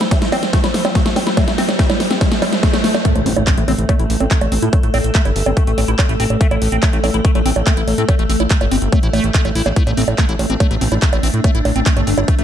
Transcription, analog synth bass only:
3.16 3.22 A1 medium
3.26 3.33 A1 loud
3.37 3.43 A1 medium
3.58 3.64 A1 medium
3.68 3.75 A1 loud
3.79 3.85 A1 medium
3.99 4.06 A1 medium
4.10 4.17 A1 loud
4.20 4.27 A1 loud
4.41 4.48 A1 medium
4.52 4.59 A1 medium
4.62 4.69 A2 medium
4.83 4.90 A1 medium
4.94 5.01 A1 loud
5.04 5.11 A1 medium
5.25 5.32 G1 medium
5.36 5.43 G1 loud
5.46 5.53 G1 medium
5.67 5.74 A1 medium
5.78 5.85 A1 loud
5.88 5.95 A1 loud
6.09 6.16 A1 medium
6.20 6.26 A1 loud
6.30 6.37 A1 medium
6.51 6.58 A1 medium
6.62 6.68 A1 loud
6.72 6.79 A1 medium
6.93 7.00 A1 medium
7.04 7.10 A1 loud
7.14 7.21 A1 medium
7.35 7.42 A1 medium
7.46 7.52 A1 loud
7.56 7.63 A1 loud
7.77 7.84 A1 medium
7.88 7.94 A1 loud
7.98 8.05 A2 medium
8.19 8.26 A1 medium
8.30 8.36 A1 loud
8.40 8.47 A1 medium
8.61 8.68 G1 medium
8.71 8.78 G1 loud
8.82 8.89 G1 medium
9.03 9.10 A1 medium
9.13 9.20 A1 loud
9.24 9.31 A1 loud
9.45 9.52 A1 medium
9.55 9.62 A1 loud
9.66 9.73 A1 medium
9.87 9.94 A1 medium
9.97 10.04 A1 loud
10.08 10.15 A1 medium
10.29 10.36 A1 medium
10.39 10.46 A1 loud
10.50 10.57 A1 medium
10.71 10.78 A1 medium
10.81 10.88 A1 loud
10.92 10.98 A1 loud
11.13 11.19 A1 medium
11.23 11.30 A1 medium
11.34 11.40 A2 medium
11.55 11.61 A1 medium
11.65 11.72 A1 loud
11.76 11.82 A1 medium
11.97 12.03 G1 medium
12.07 12.14 G1 loud
12.18 12.24 G1 medium
12.39 12.44 A1 medium

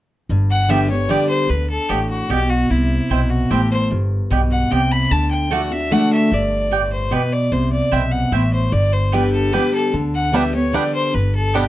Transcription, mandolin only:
0.69 0.79 B3 medium
0.69 0.79 G4 medium
0.69 0.79 D5 loud
0.69 0.79 G5 loud
1.09 1.19 B3 medium
1.09 1.19 G4 medium
1.09 1.19 D5 medium
1.09 1.19 G5 loud
1.89 1.99 B3 loud
1.89 1.99 G4 loud
1.89 1.99 D5 loud
1.89 1.99 G5 medium
2.30 2.39 B3 medium
2.30 2.39 G4 medium
2.30 2.40 D5 medium
2.30 2.40 G5 loud
3.10 3.19 C4 medium
3.10 3.20 E4 loud
3.10 3.20 C5 loud
3.10 3.20 G5 loud
3.51 3.60 C4 medium
3.51 3.60 E4 medium
3.51 3.60 C5 medium
3.51 3.60 G5 medium
4.31 4.40 B3 medium
4.31 4.40 G4 medium
4.31 4.40 D5 medium
4.31 4.41 G5 loud
4.71 4.80 B3 medium
4.71 4.81 G4 medium
4.71 4.81 D5 medium
4.71 4.81 G5 medium
5.51 5.60 A3 loud
5.51 5.60 F#4 medium
5.51 5.60 D5 loud
5.51 5.61 A5 loud
5.91 6.01 A3 medium
5.91 6.01 F#4 medium
5.91 6.01 D5 medium
5.91 6.01 A5 medium
6.71 6.81 B3 medium
6.71 6.81 G4 medium
6.71 6.81 D5 loud
6.71 6.81 G5 loud
7.11 7.21 B3 medium
7.11 7.21 G4 medium
7.11 7.21 D5 medium
7.11 7.21 G5 loud
7.91 8.01 C4 medium
7.91 8.01 E4 loud
7.91 8.01 C5 medium
7.91 8.02 G5 loud
8.32 8.41 C4 medium
8.32 8.42 E4 loud
8.32 8.42 C5 loud
8.32 8.42 G5 loud
9.12 9.22 B3 medium
9.12 9.22 G4 medium
9.12 9.22 D5 loud
9.12 9.22 G5 medium
9.52 9.62 B3 medium
9.52 9.62 G4 medium
9.52 9.62 D5 medium
9.52 9.62 G5 loud
10.33 10.42 B3 medium
10.33 10.43 G4 medium
10.33 10.43 D5 loud
10.33 10.43 G5 loud
10.73 10.83 B3 medium
10.73 10.83 G4 medium
10.73 10.83 D5 medium
10.73 10.83 G5 medium
11.54 11.63 B3 medium
11.54 11.63 G4 medium
11.54 11.63 D5 medium
11.54 11.64 G5 loud

